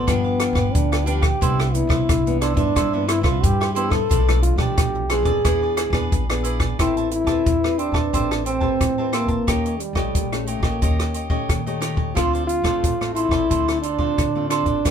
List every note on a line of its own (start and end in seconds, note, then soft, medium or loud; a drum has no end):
0.00 0.75 B3 loud
0.07 0.51 G1 medium
0.07 0.72 G2 medium
0.07 0.53 F3 medium
0.07 0.53 B3 medium
0.07 0.23 D4 medium
0.07 0.53 D4 medium
0.07 0.23 G4 medium
0.07 0.23 B4 medium
0.07 0.23 F5 medium
0.07 kick medium
0.07 cross-stick medium
0.07 closed hi-hat medium
0.24 0.39 G4 soft
0.24 0.39 B4 soft
0.24 0.40 F5 medium
0.40 0.56 D4 soft
0.40 0.56 G4 soft
0.40 0.55 B4 soft
0.40 0.54 F5 medium
0.40 cross-stick medium
0.40 closed hi-hat soft
0.53 0.69 G1 medium
0.53 1.02 F3 medium
0.53 1.02 B3 medium
0.53 1.02 D4 medium
0.53 0.90 G4 medium
0.53 0.89 B4 medium
0.53 0.89 F5 medium
0.53 kick medium
0.53 cross-stick medium
0.74 1.32 D2 medium
0.74 1.39 D3 medium
0.74 1.07 D4 medium
0.74 kick medium
0.74 closed hi-hat medium
0.92 1.05 G4 soft
0.92 1.06 B4 soft
0.92 1.06 F5 medium
0.92 cross-stick medium
0.92 closed hi-hat soft
1.06 1.29 F3 medium
1.06 1.30 B3 medium
1.06 1.23 D4 medium
1.06 1.30 D4 medium
1.06 1.75 G4 loud
1.06 1.22 G4 medium
1.06 1.21 B4 medium
1.06 1.20 F5 medium
1.06 closed hi-hat soft
1.21 1.40 G4 soft
1.21 1.39 B4 soft
1.21 1.39 F5 soft
1.21 kick medium
1.21 cross-stick medium
1.21 closed hi-hat soft
1.41 1.85 C2 loud
1.41 2.06 C3 medium
1.41 1.70 E3 medium
1.41 1.70 B3 medium
1.41 1.70 D4 medium
1.41 1.57 E4 medium
1.41 1.58 B4 medium
1.41 1.57 C5 medium
1.41 1.58 E5 medium
1.41 kick medium
1.41 closed hi-hat medium
1.59 1.73 B4 soft
1.59 1.73 C5 soft
1.59 1.73 E5 medium
1.59 cross-stick medium
1.74 2.20 E3 medium
1.74 2.20 B3 medium
1.74 2.20 D4 medium
1.74 2.40 E4 medium
1.74 muted cavaquinho stroke soft
1.74 closed hi-hat soft
1.87 2.04 C2 medium
1.87 2.23 B4 medium
1.87 2.24 C5 medium
1.87 2.23 E5 medium
1.87 kick medium
1.87 cross-stick medium
2.09 2.52 C2 medium
2.09 2.73 G2 medium
2.09 kick medium
2.09 cross-stick medium
2.09 closed hi-hat medium
2.26 2.71 E3 medium
2.26 2.72 B3 medium
2.26 2.72 D4 medium
2.26 muted cavaquinho stroke soft
2.26 closed hi-hat soft
2.40 2.56 D4 medium
2.40 2.57 E4 medium
2.40 2.56 B4 medium
2.40 2.57 C5 medium
2.40 2.55 E5 medium
2.40 cross-stick medium
2.40 closed hi-hat soft
2.54 2.71 G2 medium
2.54 3.09 D4 loud
2.54 2.74 B4 medium
2.54 2.74 C5 medium
2.54 2.73 E5 medium
2.54 kick medium
2.54 closed hi-hat soft
2.75 3.19 G2 loud
2.75 3.40 C3 medium
2.75 2.86 E3 medium
2.75 2.87 B3 medium
2.75 2.87 D4 medium
2.75 2.91 E4 medium
2.75 2.92 B4 medium
2.75 2.92 C5 medium
2.75 2.92 E5 medium
2.75 kick medium
2.75 cross-stick medium
2.75 closed hi-hat medium
2.93 3.22 E3 medium
2.93 3.22 B3 medium
2.93 3.22 D4 medium
2.93 3.08 B4 soft
2.93 3.07 C5 soft
2.93 3.08 E5 medium
3.07 3.22 E4 medium
3.07 3.24 E4 soft
3.07 3.23 B4 medium
3.07 3.24 C5 soft
3.07 3.22 E5 medium
3.07 cross-stick medium
3.07 closed hi-hat medium
3.21 3.38 C2 medium
3.21 3.71 E3 medium
3.21 3.71 D4 medium
3.21 3.44 F4 loud
3.21 3.58 B4 medium
3.21 3.58 C5 medium
3.21 3.57 E5 medium
3.21 kick medium
3.21 cross-stick medium
3.43 4.07 G2 medium
3.43 4.00 G2 loud
3.43 3.74 G4 loud
3.43 kick medium
3.43 closed hi-hat medium
3.61 3.75 B4 medium
3.61 3.74 C5 soft
3.61 3.75 E5 medium
3.61 cross-stick medium
3.74 3.98 E3 medium
3.74 3.98 B3 medium
3.74 3.98 D4 medium
3.74 3.91 E4 medium
3.74 3.92 G4 medium
3.74 3.90 B4 medium
3.74 3.91 C5 medium
3.74 3.89 E5 medium
3.74 closed hi-hat soft
3.90 4.42 A4 loud
3.90 4.08 B4 soft
3.90 4.08 C5 soft
3.90 4.07 E5 medium
3.90 kick medium
3.90 cross-stick medium
4.09 4.53 B1 medium
4.09 4.75 B2 medium
4.09 4.21 F3 medium
4.09 4.21 A3 medium
4.09 4.21 D4 medium
4.09 4.25 F4 medium
4.09 4.26 A4 medium
4.09 4.26 B4 medium
4.09 4.26 D5 medium
4.09 kick medium
4.09 closed hi-hat medium
4.28 4.56 F3 medium
4.28 4.56 A3 medium
4.28 4.57 D4 medium
4.28 4.42 A4 soft
4.28 4.42 B4 soft
4.28 4.42 D5 medium
4.28 cross-stick medium
4.28 closed hi-hat soft
4.42 4.60 F4 loud
4.42 muted cavaquinho stroke soft
4.42 closed hi-hat medium
4.56 4.72 B1 medium
4.56 5.05 F3 medium
4.56 5.05 A3 medium
4.56 5.05 D4 medium
4.56 5.11 G4 loud
4.56 4.92 A4 medium
4.56 4.92 B4 medium
4.56 4.91 D5 medium
4.56 kick medium
4.56 cross-stick medium
4.78 5.20 B1 medium
4.78 5.42 B2 medium
4.78 kick medium
4.78 cross-stick medium
4.78 closed hi-hat medium
4.95 muted cavaquinho stroke soft
5.09 5.31 F3 medium
5.09 5.31 A3 medium
5.09 5.31 D4 medium
5.09 5.26 F4 soft
5.09 6.11 G#4 loud
5.09 5.25 A4 soft
5.09 5.25 B4 medium
5.09 5.24 D5 medium
5.09 cross-stick medium
5.09 closed hi-hat soft
5.23 5.39 F2 medium
5.23 5.43 A4 medium
5.23 5.42 B4 medium
5.23 5.42 D5 medium
5.23 kick medium
5.23 closed hi-hat soft
5.45 5.88 E2 loud
5.45 6.09 E3 medium
5.45 5.90 B3 medium
5.45 5.90 D4 medium
5.45 5.60 E4 medium
5.45 5.60 G#4 medium
5.45 5.91 G#4 medium
5.45 5.61 B4 medium
5.45 5.61 D5 medium
5.45 kick medium
5.45 cross-stick medium
5.45 closed hi-hat medium
5.62 5.76 G#4 soft
5.62 5.77 B4 soft
5.62 5.77 D5 medium
5.77 5.93 E4 soft
5.77 5.93 G#4 medium
5.77 5.92 B4 soft
5.77 5.91 D5 medium
5.77 cross-stick medium
5.77 closed hi-hat soft
5.90 6.07 E2 medium
5.90 6.22 B3 medium
5.90 6.23 D4 medium
5.90 6.27 G#4 medium
5.90 6.27 B4 medium
5.90 6.26 D5 medium
5.90 kick medium
5.90 cross-stick medium
5.94 6.23 G#4 medium
6.12 6.69 A#1 medium
6.12 kick medium
6.12 closed hi-hat medium
6.29 6.77 B3 medium
6.29 6.77 D4 medium
6.29 6.43 G#4 soft
6.29 6.77 G#4 medium
6.29 6.44 B4 soft
6.29 6.44 D5 soft
6.29 cross-stick medium
6.29 closed hi-hat soft
6.44 6.60 E4 medium
6.44 6.60 G#4 medium
6.44 6.59 B4 medium
6.44 6.58 D5 medium
6.44 closed hi-hat soft
6.60 6.77 G#4 soft
6.60 6.77 B4 soft
6.60 6.76 D5 soft
6.60 kick medium
6.60 cross-stick medium
6.60 closed hi-hat soft
6.79 7.22 A1 medium
6.79 7.43 A3 medium
6.79 7.24 C4 medium
6.79 7.10 E4 loud
6.79 6.95 G4 medium
6.79 7.24 G4 medium
6.79 7.25 B4 medium
6.79 6.95 C5 medium
6.79 6.95 E5 medium
6.79 6.95 A5 medium
6.79 kick medium
6.79 cross-stick medium
6.79 closed hi-hat medium
6.97 7.11 C5 soft
6.97 7.11 E5 soft
6.97 7.11 A5 soft
6.97 closed hi-hat soft
7.11 7.80 E4 loud
7.11 muted cavaquinho stroke soft
7.11 closed hi-hat soft
7.24 7.41 E2 medium
7.24 7.57 C4 medium
7.24 7.57 G4 medium
7.24 7.61 E5 medium
7.24 7.60 A5 medium
7.24 kick medium
7.24 cross-stick medium
7.24 closed hi-hat soft
7.28 7.57 B4 medium
7.28 7.61 C5 soft
7.46 7.89 E2 medium
7.46 kick medium
7.46 closed hi-hat medium
7.64 8.09 C4 medium
7.64 8.09 G4 medium
7.64 8.09 B4 medium
7.64 muted cavaquinho stroke soft
7.64 cross-stick medium
7.78 8.45 D4 medium
7.78 7.94 G4 soft
7.78 7.94 C5 soft
7.78 7.93 E5 medium
7.78 7.92 A5 soft
7.78 closed hi-hat soft
7.92 8.08 E2 medium
7.92 8.12 C5 soft
7.92 8.11 E5 medium
7.92 8.11 A5 medium
7.92 kick medium
7.92 cross-stick medium
8.13 8.71 A1 medium
8.13 8.77 A3 medium
8.13 8.45 C4 medium
8.13 8.29 G4 medium
8.13 8.45 G4 medium
8.13 8.45 B4 medium
8.13 8.29 C5 medium
8.13 8.29 E5 medium
8.13 8.29 A5 medium
8.13 kick medium
8.13 closed hi-hat medium
8.31 8.45 C5 soft
8.31 8.45 E5 soft
8.31 8.46 A5 soft
8.31 cross-stick medium
8.31 closed hi-hat soft
8.45 9.15 C4 medium
8.45 8.62 G4 soft
8.45 8.61 C5 soft
8.45 8.60 E5 soft
8.45 8.59 A5 medium
8.45 closed hi-hat medium
8.61 8.91 C4 medium
8.61 8.91 G4 medium
8.61 8.91 B4 medium
8.61 8.95 C5 medium
8.61 8.95 E5 medium
8.61 8.94 A5 medium
8.61 kick medium
8.81 9.24 A2 medium
8.81 9.44 E3 medium
8.81 kick medium
8.81 cross-stick medium
8.81 closed hi-hat medium
8.98 9.43 C4 medium
8.98 9.43 G4 soft
8.98 9.43 B4 medium
8.98 9.12 C5 soft
8.98 9.12 E5 soft
8.98 9.13 A5 soft
9.12 9.81 A#3 medium
9.12 9.29 G4 medium
9.12 9.28 C5 medium
9.12 9.28 E5 medium
9.12 9.27 A5 medium
9.12 cross-stick medium
9.12 closed hi-hat soft
9.26 9.42 A1 medium
9.26 9.46 C5 soft
9.26 9.45 E5 soft
9.26 9.45 A5 soft
9.26 kick medium
9.26 closed hi-hat soft
9.47 9.91 D#2 medium
9.47 10.12 D#3 medium
9.47 9.80 C#4 medium
9.47 9.63 D#4 medium
9.47 9.63 G4 medium
9.47 9.80 G4 medium
9.47 9.64 C#5 medium
9.47 9.64 D#5 medium
9.47 kick medium
9.47 cross-stick medium
9.47 closed hi-hat medium
9.65 9.79 G4 soft
9.65 9.79 C#5 soft
9.65 9.79 D#5 soft
9.65 closed hi-hat soft
9.80 10.49 G3 medium
9.80 muted cavaquinho stroke soft
9.80 closed hi-hat soft
9.93 10.10 A#1 medium
9.93 10.25 A3 medium
9.93 10.25 C#4 medium
9.93 10.26 G4 medium
9.93 10.30 G4 medium
9.93 10.29 C#5 medium
9.93 10.29 D#5 medium
9.93 kick medium
9.93 cross-stick medium
10.15 10.58 A#1 medium
10.15 10.79 A#2 medium
10.15 kick medium
10.15 closed hi-hat medium
10.32 10.77 A3 medium
10.32 10.77 C#4 medium
10.32 10.78 G4 medium
10.32 muted cavaquinho stroke soft
10.32 cross-stick medium
10.32 closed hi-hat soft
10.47 10.62 A3 medium
10.47 10.63 D#4 soft
10.47 10.63 G4 medium
10.47 10.62 C#5 medium
10.47 10.61 D#5 soft
10.47 closed hi-hat soft
10.60 10.77 A#1 medium
10.60 11.27 A#3 medium
10.60 10.80 G4 medium
10.60 10.80 C#5 medium
10.60 10.79 D#5 medium
10.60 kick medium
10.60 cross-stick medium
10.82 11.39 D#2 medium
10.82 11.46 D#3 medium
10.82 11.27 C#4 medium
10.82 10.97 D#4 medium
10.82 10.98 G4 medium
10.82 11.27 G4 medium
10.82 10.98 C#5 medium
10.82 10.98 D#5 medium
10.82 kick medium
10.82 closed hi-hat medium
11.00 11.13 G4 soft
11.00 11.14 C#5 soft
11.00 11.14 D#5 soft
11.00 cross-stick medium
11.00 closed hi-hat soft
11.14 11.30 D#4 soft
11.14 11.30 G4 soft
11.14 11.29 C#5 medium
11.14 11.28 D#5 soft
11.14 closed hi-hat soft
11.30 11.59 A3 medium
11.30 11.60 C#4 medium
11.30 11.60 G4 medium
11.30 11.64 G4 medium
11.30 11.64 C#5 medium
11.30 11.63 D#5 medium
11.30 kick medium
11.49 12.13 A#2 soft
11.49 11.92 D#3 medium
11.49 kick medium
11.49 cross-stick medium
11.49 closed hi-hat medium
11.66 12.11 A3 medium
11.66 12.12 C#4 soft
11.66 12.12 G4 medium
11.66 11.80 G4 soft
11.66 11.81 C#5 soft
11.66 11.81 D#5 soft
11.66 closed hi-hat soft
11.81 11.97 D#4 medium
11.81 11.97 G4 medium
11.81 11.96 C#5 medium
11.81 11.95 D#5 medium
11.81 cross-stick medium
11.81 closed hi-hat soft
11.95 12.11 D#2 medium
11.95 12.14 G4 soft
11.95 12.14 C#5 soft
11.95 12.13 D#5 soft
11.95 kick medium
12.15 12.59 D2 medium
12.15 12.80 D3 medium
12.15 12.61 A3 medium
12.15 12.61 C4 medium
12.15 12.31 F4 medium
12.15 12.46 F4 loud
12.15 12.62 F4 medium
12.15 12.32 A4 medium
12.15 12.32 C5 medium
12.15 12.32 D5 medium
12.15 kick medium
12.15 cross-stick medium
12.15 closed hi-hat medium
12.33 12.47 A4 soft
12.33 12.47 C5 soft
12.33 12.47 D5 medium
12.33 closed hi-hat soft
12.47 13.12 F4 loud
12.47 muted cavaquinho stroke soft
12.47 closed hi-hat soft
12.62 12.78 A1 medium
12.62 12.93 A3 medium
12.62 12.94 C4 medium
12.62 12.94 F4 medium
12.62 12.98 A4 soft
12.62 12.98 C5 medium
12.62 12.97 D5 medium
12.62 kick medium
12.62 cross-stick medium
12.62 closed hi-hat soft
12.83 13.26 A1 medium
12.83 13.47 A2 soft
12.83 kick medium
12.83 closed hi-hat medium
13.01 13.46 A3 medium
13.01 13.46 C4 medium
13.01 13.46 F4 medium
13.01 muted cavaquinho stroke soft
13.01 cross-stick medium
13.14 13.79 E4 loud
13.14 13.32 F4 soft
13.14 13.31 A4 medium
13.14 13.31 C5 soft
13.14 13.30 D5 soft
13.14 closed hi-hat soft
13.29 13.45 A1 medium
13.29 13.49 A4 medium
13.29 13.48 C5 medium
13.29 13.48 D5 medium
13.29 kick medium
13.29 cross-stick medium
13.50 14.08 D2 loud
13.50 14.15 D3 medium
13.50 13.82 A3 medium
13.50 13.83 C4 medium
13.50 13.66 F4 medium
13.50 13.66 A4 medium
13.50 13.66 C5 medium
13.50 13.66 D5 medium
13.50 kick medium
13.50 closed hi-hat medium
13.68 13.82 A4 soft
13.68 13.83 C5 soft
13.68 13.83 D5 soft
13.68 cross-stick medium
13.68 closed hi-hat soft
13.82 14.46 D4 loud
13.82 13.99 F4 soft
13.82 13.99 A4 soft
13.82 13.98 C5 soft
13.82 13.97 D5 medium
13.82 closed hi-hat soft
13.98 14.28 A3 medium
13.98 14.28 C4 medium
13.98 14.29 F4 medium
13.98 14.33 A4 medium
13.98 14.32 C5 medium
13.98 14.32 D5 medium
13.98 kick medium
14.18 14.82 A2 medium
14.18 14.61 D3 medium
14.18 kick medium
14.18 cross-stick medium
14.18 closed hi-hat medium
14.35 14.80 A3 medium
14.35 14.80 C4 medium
14.35 14.80 F4 medium
14.35 14.50 A4 soft
14.35 14.50 C5 soft
14.35 14.50 D5 soft
14.49 14.91 D4 loud
14.49 14.66 F4 medium
14.49 14.66 A4 medium
14.49 14.65 C5 medium
14.49 14.64 D5 medium
14.49 cross-stick medium
14.49 closed hi-hat medium
14.63 14.80 A1 medium
14.63 14.83 A4 soft
14.63 14.83 C5 soft
14.63 14.82 D5 soft
14.63 kick medium
14.63 closed hi-hat soft
14.85 14.91 G1 medium
14.85 14.91 G2 medium
14.85 14.91 F3 medium
14.85 14.91 B3 medium
14.85 14.91 D4 medium
14.85 14.91 G4 medium
14.85 14.91 B4 medium
14.85 14.91 F5 medium
14.85 kick medium
14.85 cross-stick medium
14.85 closed hi-hat medium